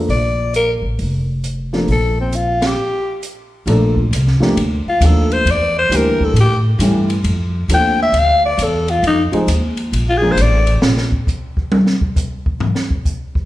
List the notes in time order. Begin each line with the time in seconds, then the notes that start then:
0.08 A#1 D5, open hi-hat
0.54 A#4, closed hi-hat
0.82 A1
0.99 F1, open hi-hat
1.44 closed hi-hat
1.73 F3 A#3 D4 A4, snare
1.88 A#1 A4, open hi-hat
2.21 C4
2.33 F4, closed hi-hat
2.62 G4, snare, ride
3.23 closed hi-hat
3.66 A#1 F3 A3 A#3 D4 A4, ride
3.97 kick
4.11 C2, hi-hat pedal, ride
4.27 snare
4.40 F3 A3 A#3 D4 G4, muted upright bass stroke, snare
4.57 D2, ride
4.86 F4, muted upright bass stroke
5.00 D#2 F3 A3 A#3 D4 A4, hi-hat pedal, ride
5.05 A4
5.31 C5, ride
5.45 E2, ride
5.51 D5
5.78 C5
5.89 D2 E3 G3 A#3 D4 G4, hi-hat pedal, ride
5.96 A#4
6.20 kick
6.24 A4
6.33 A2, ride
6.40 G4
6.79 G2 E3 G3 A3 C#4 G4, hi-hat pedal, ride
7.10 ride
7.24 F2, ride
7.68 D#2 F3 A3 C4 D4 A4, hi-hat pedal, ride
7.74 G5
8.02 E5
8.12 D2, ride
8.19 F5
8.46 D5
8.58 E2, hi-hat pedal, ride
8.63 A4
8.88 F4, ride
9.02 F2, ride
9.07 D#4
9.32 F3 G#3 C4 D#4 G#4, muted upright bass stroke, ride
9.47 D#2, hi-hat pedal, ride
9.77 ride
9.92 A#1, ride
10.09 F4
10.17 G#4
10.22 F3 G#3 A#3 D4 G#4
10.32 C5
10.37 A1, hi-hat pedal, ride
10.41 D5
10.67 ride
10.82 A#1, snare
10.98 snare
11.12 kick
11.27 kick, hi-hat pedal
11.57 kick
11.72 high tom
11.87 snare
12.01 kick
12.16 kick, hi-hat pedal
12.46 kick
12.60 floor tom
12.75 snare
12.91 kick
13.05 kick, hi-hat pedal
13.35 kick